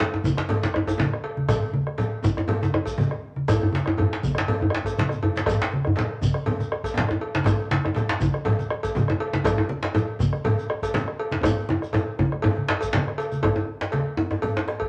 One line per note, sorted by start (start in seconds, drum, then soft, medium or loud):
0.00 cowbell soft
0.00 djembe slap loud
0.00 low conga medium
0.00 shekere soft
0.14 djembe tone medium
0.24 bombo low medium
0.24 djembe tone medium
0.24 high conga medium
0.24 shekere medium
0.37 bombo rim medium
0.37 djembe slap soft
0.37 djembe slap medium
0.49 cowbell soft
0.49 djembe slap medium
0.49 djembe bass medium
0.49 low conga medium
0.62 djembe slap soft
0.62 high conga medium
0.63 djembe slap loud
0.63 shekere soft
0.74 bombo rim medium
0.74 djembe slap soft
0.74 djembe tone loud
0.87 bombo low medium
0.87 cowbell soft
0.87 djembe tone medium
0.87 shekere soft
0.98 djembe slap medium
0.98 djembe tone medium
1.00 djembe slap medium
1.00 high conga medium
1.00 low conga medium
1.00 shekere soft
1.13 bombo rim medium
1.24 cowbell soft
1.24 djembe slap soft
1.37 high conga medium
1.49 bombo rim medium
1.49 bombo low medium
1.49 cowbell medium
1.49 djembe slap medium
1.49 djembe bass medium
1.49 low conga medium
1.49 shekere medium
1.62 bombo rim soft
1.62 djembe tone medium
1.73 high conga medium
1.87 bombo rim medium
1.98 cowbell soft
1.98 djembe slap medium
1.98 low conga medium
1.98 shekere soft
2.23 bombo low loud
2.23 djembe tone medium
2.23 high conga medium
2.23 shekere medium
2.24 djembe tone medium
2.37 bombo rim medium
2.37 djembe slap soft
2.37 djembe tone medium
2.48 cowbell soft
2.48 djembe slap medium
2.48 djembe bass medium
2.48 low conga medium
2.61 djembe slap soft
2.61 high conga medium
2.61 djembe tone medium
2.61 shekere soft
2.73 bombo rim loud
2.73 djembe slap soft
2.73 djembe tone loud
2.86 bombo low medium
2.86 cowbell soft
2.86 shekere soft
2.98 djembe slap medium
2.98 djembe tone medium
2.98 high conga medium
2.98 low conga medium
2.98 shekere soft
3.11 bombo rim medium
3.11 high conga soft
3.24 djembe slap soft
3.36 high conga medium
3.48 bombo rim loud
3.48 bombo low loud
3.48 cowbell medium
3.48 djembe slap medium
3.48 high conga soft
3.48 djembe tone loud
3.48 low conga medium
3.48 djembe bass medium
3.48 shekere medium
3.61 bombo rim soft
3.61 djembe slap soft
3.61 djembe tone medium
3.61 djembe bass medium
3.72 djembe slap soft
3.72 djembe slap medium
3.72 high conga medium
3.72 shekere soft
3.86 bombo rim medium
3.86 high conga soft
3.86 djembe tone loud
3.97 bombo rim soft
3.97 cowbell soft
3.97 djembe slap medium
3.97 low conga medium
3.97 djembe bass medium
4.13 djembe slap medium
4.23 bombo rim soft
4.23 bombo low loud
4.23 djembe slap soft
4.23 high conga medium
4.23 djembe tone medium
4.23 shekere medium
4.35 bombo rim medium
4.35 djembe slap loud
4.48 cowbell medium
4.48 djembe slap medium
4.48 high conga soft
4.48 low conga medium
4.48 djembe bass medium
4.60 bombo rim soft
4.60 djembe slap soft
4.60 high conga medium
4.60 djembe bass medium
4.70 bombo rim loud
4.70 djembe slap soft
4.70 high conga soft
4.75 djembe slap loud
4.84 bombo low medium
4.84 cowbell soft
4.84 high conga soft
4.84 djembe bass soft
4.84 shekere soft
4.97 bombo rim soft
4.97 djembe slap loud
4.97 high conga medium
4.97 djembe bass soft
4.97 low conga medium
4.97 shekere soft
5.09 bombo rim medium
5.09 djembe bass medium
5.09 shekere soft
5.23 cowbell soft
5.23 djembe slap medium
5.23 djembe bass medium
5.36 djembe slap medium
5.36 high conga medium
5.36 shekere soft
5.37 djembe slap medium
5.46 bombo rim loud
5.46 bombo low loud
5.46 cowbell medium
5.46 djembe slap medium
5.46 djembe bass medium
5.46 low conga medium
5.46 shekere medium
5.60 bombo rim soft
5.60 djembe slap loud
5.60 djembe tone medium
5.73 high conga medium
5.85 bombo rim medium
5.85 djembe bass medium
5.96 cowbell soft
5.96 djembe slap medium
5.96 low conga medium
5.96 shekere soft
5.99 djembe slap medium
6.21 bombo low loud
6.21 djembe tone medium
6.21 high conga medium
6.21 shekere medium
6.34 bombo rim medium
6.34 djembe slap soft
6.46 cowbell soft
6.46 djembe slap medium
6.46 djembe bass medium
6.46 low conga medium
6.59 djembe slap soft
6.59 high conga medium
6.59 shekere soft
6.70 bombo rim loud
6.70 djembe slap soft
6.84 bombo low medium
6.84 cowbell soft
6.84 shekere soft
6.94 djembe slap medium
6.94 djembe tone medium
6.94 shekere soft
6.98 djembe slap loud
6.98 high conga medium
6.98 low conga medium
7.09 bombo rim medium
7.09 high conga soft
7.09 djembe tone medium
7.20 cowbell soft
7.20 djembe slap soft
7.35 djembe slap loud
7.35 high conga medium
7.44 bombo rim loud
7.44 bombo low loud
7.44 cowbell medium
7.44 djembe slap medium
7.44 djembe tone medium
7.44 djembe bass medium
7.44 low conga medium
7.44 shekere medium
7.58 bombo rim soft
7.58 djembe tone medium
7.71 djembe slap loud
7.71 high conga medium
7.85 bombo rim medium
7.85 djembe tone medium
7.95 cowbell soft
7.95 djembe slap medium
7.95 low conga medium
7.95 shekere soft
8.09 djembe slap loud
8.20 bombo low loud
8.20 djembe tone medium
8.20 high conga medium
8.20 shekere medium
8.22 djembe tone medium
8.33 bombo rim medium
8.33 djembe slap soft
8.45 cowbell medium
8.45 djembe slap medium
8.45 djembe bass medium
8.45 low conga medium
8.58 djembe slap soft
8.58 high conga medium
8.58 shekere soft
8.71 bombo rim loud
8.71 djembe slap soft
8.83 bombo low medium
8.83 cowbell medium
8.83 shekere soft
8.95 djembe slap medium
8.95 djembe tone medium
8.95 high conga medium
8.95 low conga medium
8.95 shekere soft
9.08 bombo rim medium
9.08 djembe tone loud
9.19 cowbell medium
9.19 djembe slap soft
9.33 djembe slap medium
9.33 high conga medium
9.44 bombo rim loud
9.44 bombo low loud
9.44 cowbell medium
9.44 djembe slap medium
9.44 djembe tone medium
9.44 low conga medium
9.44 djembe bass medium
9.44 shekere medium
9.58 bombo rim soft
9.58 djembe tone medium
9.58 djembe tone loud
9.69 high conga medium
9.83 bombo rim medium
9.83 djembe slap medium
9.95 cowbell medium
9.95 djembe slap medium
9.95 djembe tone medium
9.95 low conga medium
9.95 shekere soft
10.19 bombo low loud
10.19 djembe tone medium
10.19 high conga medium
10.19 shekere medium
10.32 bombo rim medium
10.32 djembe slap soft
10.44 cowbell medium
10.44 djembe slap medium
10.44 low conga medium
10.44 djembe bass medium
10.58 djembe slap soft
10.58 shekere soft
10.70 bombo rim loud
10.70 djembe slap soft
10.82 bombo low medium
10.82 cowbell medium
10.82 shekere soft
10.94 djembe slap medium
10.94 high conga medium
10.94 djembe tone medium
10.94 low conga medium
10.94 shekere soft
11.08 bombo rim medium
11.08 high conga soft
11.20 cowbell medium
11.20 djembe slap soft
11.31 djembe slap medium
11.31 high conga medium
11.43 bombo rim medium
11.43 bombo low loud
11.43 cowbell medium
11.43 djembe slap medium
11.43 high conga soft
11.43 djembe tone loud
11.43 low conga medium
11.43 djembe bass medium
11.43 shekere medium
11.57 bombo rim soft
11.57 djembe slap soft
11.57 djembe tone medium
11.69 high conga medium
11.69 djembe tone loud
11.82 bombo rim medium
11.82 shekere soft
11.93 bombo rim soft
11.93 cowbell medium
11.93 djembe slap medium
11.93 high conga soft
11.93 djembe tone loud
11.93 low conga medium
11.93 shekere soft
12.06 high conga soft
12.19 bombo rim soft
12.19 bombo low medium
12.19 high conga medium
12.19 djembe tone medium
12.19 djembe tone loud
12.32 bombo rim medium
12.42 bombo rim soft
12.42 cowbell medium
12.42 djembe slap medium
12.42 high conga soft
12.42 djembe tone loud
12.42 low conga medium
12.42 djembe bass medium
12.57 high conga medium
12.68 bombo rim loud
12.68 djembe slap loud
12.68 high conga soft
12.81 bombo rim soft
12.81 bombo low medium
12.81 cowbell medium
12.81 shekere soft
12.93 bombo rim soft
12.93 djembe slap loud
12.93 djembe slap medium
12.93 djembe tone medium
12.93 high conga medium
12.93 low conga medium
13.08 bombo rim medium
13.18 cowbell medium
13.18 shekere soft
13.32 high conga medium
13.32 shekere soft
13.42 bombo rim medium
13.42 bombo low medium
13.42 cowbell medium
13.42 djembe tone loud
13.42 djembe bass medium
13.42 low conga medium
13.55 djembe slap medium
13.55 djembe tone medium
13.68 djembe slap soft
13.81 bombo rim medium
13.81 djembe slap soft
13.81 djembe slap medium
13.92 cowbell soft
13.92 djembe slap medium
13.92 high conga medium
14.06 djembe slap soft
14.17 bombo rim soft
14.17 djembe slap soft
14.17 djembe tone loud
14.17 djembe tone medium
14.31 bombo rim medium
14.31 djembe slap medium
14.31 djembe tone medium
14.31 high conga soft
14.42 bombo rim soft
14.42 cowbell medium
14.42 low conga medium
14.42 djembe bass medium
14.57 djembe slap medium
14.68 bombo rim medium
14.68 djembe slap medium
14.80 bombo low medium
14.80 cowbell medium